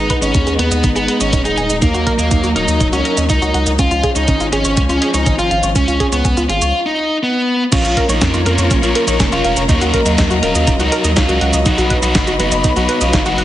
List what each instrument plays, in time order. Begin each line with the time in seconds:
Already playing: string section G#3 B3 D#4, lead electric guitar D#4
0.10 synth arpeggio sound B4, kick, closed hi-hat
0.22 analog synth bass G#1, lead electric guitar C#4, synth arpeggio sound D#5, closed hi-hat, cabasa
0.35 analog synth bass D#2, synth arpeggio sound D#4, kick, closed hi-hat, cabasa
0.47 analog synth bass D#2, synth arpeggio sound G#4, closed hi-hat, cabasa
0.59 analog synth bass D#2, lead electric guitar B3, synth arpeggio sound B4, closed hi-hat
0.71 analog synth bass D#2, synth arpeggio sound D#5, closed hi-hat, cabasa
0.84 analog synth bass G#1, synth arpeggio sound D#4, kick, closed hi-hat, cabasa
0.96 analog synth bass G#1, lead electric guitar B3, synth arpeggio sound G#4, closed hi-hat, cabasa
1.08 synth arpeggio sound B4, closed hi-hat
1.21 analog synth bass G#1, lead electric guitar C#4, synth arpeggio sound D#5, closed hi-hat, cabasa
1.33 analog synth bass D#1, synth arpeggio sound D#4, kick, closed hi-hat, cabasa
1.45 analog synth bass D#1, lead electric guitar D#4, synth arpeggio sound G#4, closed hi-hat, cabasa
1.57 analog synth bass D#1, synth arpeggio sound G#5, closed hi-hat
1.70 analog synth bass D#1, synth arpeggio sound D#5, closed hi-hat, cabasa
1.82 analog synth bass D#2, string section F#3 A#3, lead electric guitar A#3, synth arpeggio sound D#4, kick, closed hi-hat, cabasa
1.94 analog synth bass D#2, synth arpeggio sound F#4, closed hi-hat, cabasa
2.07 synth arpeggio sound A#4, kick, closed hi-hat
2.19 analog synth bass D#2, lead electric guitar A#3, synth arpeggio sound D#5, closed hi-hat, cabasa
2.31 analog synth bass D#2, synth arpeggio sound D#4, kick, closed hi-hat, cabasa
2.44 analog synth bass D#2, synth arpeggio sound F#4, closed hi-hat, cabasa
2.56 analog synth bass D#1, lead electric guitar D#4, synth arpeggio sound A#4, closed hi-hat
2.68 analog synth bass D#2, synth arpeggio sound D#5, closed hi-hat, cabasa
2.80 analog synth bass D#1, synth arpeggio sound D#4, kick, closed hi-hat, cabasa
2.93 analog synth bass C#2, lead electric guitar C#4, synth arpeggio sound F#4, closed hi-hat, cabasa
3.05 synth arpeggio sound A#4, closed hi-hat
3.17 analog synth bass D#2, synth arpeggio sound D#5, closed hi-hat, cabasa
3.29 analog synth bass C#2, synth arpeggio sound D#4, lead electric guitar D#4, kick, closed hi-hat, cabasa
3.42 analog synth bass C#2, synth arpeggio sound F#4, closed hi-hat, cabasa
3.54 analog synth bass C#2, synth arpeggio sound F#5, closed hi-hat
3.67 analog synth bass C#2, synth arpeggio sound D#5, closed hi-hat, cabasa
3.79 analog synth bass C#2, string section F3 G#3 C#4, synth arpeggio sound C#4, lead electric guitar F4, kick, closed hi-hat, cabasa
3.91 analog synth bass C#2, synth arpeggio sound F4, closed hi-hat, cabasa
4.03 synth arpeggio sound G#4, kick, closed hi-hat
4.16 analog synth bass C#2, lead electric guitar D#4, synth arpeggio sound C#5, closed hi-hat, cabasa
4.28 analog synth bass G#1, synth arpeggio sound C#4, kick, closed hi-hat, cabasa
4.40 analog synth bass G#1, synth arpeggio sound F4, closed hi-hat, cabasa
4.53 analog synth bass G#1, lead electric guitar C#4, synth arpeggio sound G#4, closed hi-hat
4.65 analog synth bass G#1, synth arpeggio sound C#5, closed hi-hat, cabasa
4.77 analog synth bass C#2, synth arpeggio sound C#4, kick, closed hi-hat, cabasa
4.89 analog synth bass C#2, lead electric guitar C#4, synth arpeggio sound F4, closed hi-hat, cabasa
5.02 synth arpeggio sound G#4, closed hi-hat
5.14 analog synth bass C#2, lead electric guitar D#4, synth arpeggio sound C#5, closed hi-hat, cabasa
5.26 analog synth bass G#1, synth arpeggio sound C#4, kick, closed hi-hat, cabasa
5.39 analog synth bass G#1, synth arpeggio sound F4, lead electric guitar F4, closed hi-hat, cabasa
5.51 analog synth bass G#1, synth arpeggio sound F5, closed hi-hat
5.63 analog synth bass G#1, synth arpeggio sound C#5, closed hi-hat, cabasa
5.76 analog synth bass C#2, synth arpeggio sound C#4, lead electric guitar C#4, kick, closed hi-hat, cabasa
5.88 analog synth bass C#2, synth arpeggio sound F4, closed hi-hat, cabasa
6.00 synth arpeggio sound G#4, kick, closed hi-hat
6.12 analog synth bass C#2, lead electric guitar B3, synth arpeggio sound C#5, closed hi-hat, cabasa
6.25 analog synth bass C#2, synth arpeggio sound C#4, kick, closed hi-hat, cabasa
6.37 analog synth bass C#2, synth arpeggio sound F4, closed hi-hat, cabasa
6.49 analog synth bass G#1, lead electric guitar F4, synth arpeggio sound G#4, closed hi-hat
6.62 analog synth bass C#2, synth arpeggio sound C#5, closed hi-hat, cabasa
6.86 lead electric guitar D#4
7.23 lead electric guitar B3
7.72 analog synth bass A#1, lead electric guitar C#4 F4, synth arpeggio sound C#4, string section F4 A#4 C#5 A#5, kick, closed hi-hat, crash, cabasa
7.85 analog synth bass A#1, synth arpeggio sound F4, closed hi-hat, cabasa
7.97 synth arpeggio sound A#4, kick, closed hi-hat
8.09 analog synth bass A#1, lead electric guitar A#3 D#4, synth arpeggio sound C#5, closed hi-hat, cabasa
8.21 analog synth bass F2, synth arpeggio sound C#4, kick, snare, closed hi-hat, cabasa
8.34 analog synth bass F2, synth arpeggio sound F4, closed hi-hat, cabasa
8.46 analog synth bass F2, lead electric guitar A#3 C#4, synth arpeggio sound A#4, closed hi-hat
8.58 analog synth bass F2, synth arpeggio sound C#5, closed hi-hat, cabasa
8.71 analog synth bass A#1, synth arpeggio sound C#4, kick, closed hi-hat, cabasa
8.83 analog synth bass A#1, lead electric guitar A#3 C#4, synth arpeggio sound F4, closed hi-hat, cabasa
8.95 synth arpeggio sound A#4, closed hi-hat
9.07 analog synth bass A#1, lead electric guitar A#3 D#4, synth arpeggio sound C#5, closed hi-hat, cabasa
9.20 analog synth bass F1, synth arpeggio sound C#4, kick, snare, closed hi-hat, cabasa
9.32 analog synth bass F1, lead electric guitar C#4 F4, synth arpeggio sound F4, closed hi-hat, cabasa
9.44 analog synth bass F1, synth arpeggio sound F5, closed hi-hat
9.57 analog synth bass F1, synth arpeggio sound C#5, closed hi-hat, cabasa
9.69 analog synth bass D#2, string section F#3 D#5, lead electric guitar A#3 C#4, synth arpeggio sound D#4, kick, closed hi-hat, cabasa
9.81 analog synth bass D#2, synth arpeggio sound F#4, closed hi-hat, cabasa
9.94 synth arpeggio sound A#4, kick, closed hi-hat
10.06 analog synth bass D#2, lead electric guitar F#3 A#3, synth arpeggio sound D#5, closed hi-hat, cabasa
10.18 analog synth bass D#2, synth arpeggio sound D#4, kick, snare, closed hi-hat, cabasa
10.30 analog synth bass D#2, synth arpeggio sound F#4, closed hi-hat, cabasa
10.43 analog synth bass D#1, lead electric guitar C#4 F4, synth arpeggio sound A#4, closed hi-hat
10.55 analog synth bass D#2, synth arpeggio sound D#5, closed hi-hat, cabasa
10.67 analog synth bass D#1, synth arpeggio sound D#4, kick, closed hi-hat, cabasa
10.80 analog synth bass C#2, lead electric guitar F#3 D#4, synth arpeggio sound F#4, closed hi-hat, cabasa
10.92 synth arpeggio sound A#4, closed hi-hat
11.04 analog synth bass D#2, synth arpeggio sound D#5, closed hi-hat, cabasa
11.16 analog synth bass C#2, lead electric guitar C#4 F4, synth arpeggio sound D#4, kick, snare, closed hi-hat, cabasa
11.29 analog synth bass C#2, synth arpeggio sound F#4, closed hi-hat, cabasa
11.41 analog synth bass C#2, synth arpeggio sound F#5, closed hi-hat
11.53 analog synth bass C#2, synth arpeggio sound D#5, closed hi-hat, cabasa
11.66 analog synth bass B1, synth arpeggio sound D#4, lead electric guitar D#4 F#4, string section B4 B5, kick, closed hi-hat, cabasa
11.78 analog synth bass B1, synth arpeggio sound F#4, closed hi-hat, cabasa
11.90 synth arpeggio sound B4, kick, closed hi-hat
12.03 analog synth bass B1, lead electric guitar D#4 F#4, synth arpeggio sound D#5, closed hi-hat, cabasa
12.15 analog synth bass F#1, synth arpeggio sound D#4, kick, snare, closed hi-hat, cabasa
12.27 analog synth bass F#1, synth arpeggio sound F#4, closed hi-hat, cabasa
12.40 analog synth bass F#1, lead electric guitar B3 D#4, synth arpeggio sound B4, closed hi-hat
12.52 analog synth bass F#1, synth arpeggio sound D#5, closed hi-hat, cabasa
12.64 analog synth bass B1, synth arpeggio sound D#4, kick, closed hi-hat, cabasa
12.76 analog synth bass B1, lead electric guitar B3 D#4, synth arpeggio sound F#4, closed hi-hat, cabasa
12.89 synth arpeggio sound B4, closed hi-hat
13.01 analog synth bass B1, lead electric guitar C#4 F4, synth arpeggio sound D#5, closed hi-hat, cabasa
13.13 analog synth bass F#1, synth arpeggio sound D#4, kick, snare, closed hi-hat, cabasa
13.26 analog synth bass F#1, lead electric guitar D#4 F#4, synth arpeggio sound F#4, closed hi-hat, cabasa
13.38 analog synth bass F#1, synth arpeggio sound F#5, closed hi-hat